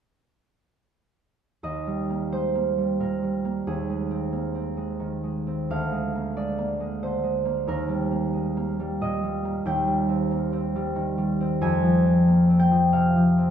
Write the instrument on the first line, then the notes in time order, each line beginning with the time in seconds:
harp
1.63 D#2 D#5
1.87 G3
2.10 A#3
2.32 G#3 C5
2.55 A#3
2.78 G3
3.00 A#2 A#4
3.23 G3
3.45 A#3
3.67 D#2 G#4
3.89 G#3
4.11 C4
4.32 A#3
4.55 C4
4.77 G#3
5.00 D#3
5.24 G#3
5.47 C4
5.70 D2 F5
5.92 G#3
6.15 A#3
6.37 G#3 D5
6.58 A#3
6.80 G#3
7.03 D3 C5
7.23 G#3
7.45 A#3
7.67 D#2 A#4
7.89 G3
8.11 A#3
8.33 G#3
8.57 A#3
8.80 G3
9.01 A#2 D#5
9.24 G3
9.45 A#3
9.65 D#2 G5
9.87 G3
10.08 C4
10.31 A#3
10.52 C4
10.76 G3
10.95 D#3
11.18 G3
11.40 C4
11.61 F2 G#5
11.83 F3
12.06 C4
12.28 A#3
12.49 C4
12.59 G5
12.72 F3
12.93 C3 F5
13.16 F3
13.38 C4